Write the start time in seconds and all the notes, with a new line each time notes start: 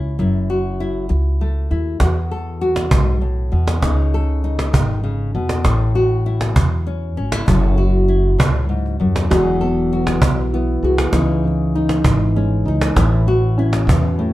Already playing: C#2 C#4 E4 F#4
0.19 F#1 F#2 E4
0.50 F#4
0.80 E4
1.09 C#2, muted nylon-string guitar stroke
1.41 A3
1.71 D#2 E4
2.00 E2 F#4, cajon bass, cajon slap
2.31 A4
2.61 F#4
2.76 cajon slap
2.91 B1 G#2, cajon bass
3.21 A2
3.52 E2 B2
3.67 cajon slap
3.82 C#2 C#3 D#4, cajon bass, cajon slap
4.14 A4
4.44 D#4
4.59 cajon slap
4.73 G#1 D#3, cajon bass
5.04 C#3
5.35 E2 B2
5.49 cajon slap
5.64 A1 A2 E4, cajon bass, cajon slap
5.95 F#4
6.26 E4
6.41 cajon slap
6.56 E2, muted nylon-string guitar stroke, cajon bass
6.87 C#4
7.17 G#1 C#4
7.32 E4, cajon slap
7.46 F#1 F#2 F#3 E4 A4, cajon bass
7.78 F#4
8.08 E4
8.38 C#2 A2, cajon bass
8.69 G#2
8.86 cajon slap
9.00 D#2 F#2
9.16 cajon slap
9.30 E1 E2 E3 F#3 B3 F#4 G#4, cajon bass, cajon slap
9.61 B3 A4
9.93 F#4
10.07 cajon slap
10.22 B1 B3, muted nylon-string guitar stroke, cajon bass
10.53 B3 E4
10.83 C2 F#4 G#4
10.98 cajon slap
11.13 C#2 C#3 E3 D#4, cajon bass, cajon slap
11.45 E3
11.75 D#4
11.89 cajon slap
12.04 G#1 E3, muted nylon-string guitar stroke, cajon bass
12.36 G#3 C#4
12.66 C#2 D#4
12.81 cajon slap
12.96 A1 A2 E3 E4, cajon bass, cajon slap
13.27 E3 F#4
13.58 C#4 E4
13.73 cajon slap
13.87 E2 B2 E3, cajon bass
14.19 A2 A3